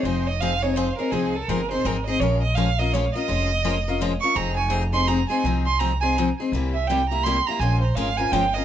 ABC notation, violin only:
X:1
M:3/4
L:1/8
Q:"Swing" 1/4=166
K:Fm
V:1 name="Violin"
c e f d c B | A =A B c B e | d e f e d e- | e4 z d' |
b a z c' b a | z c' b a z2 | z =e g b c' b | a c f a g e |]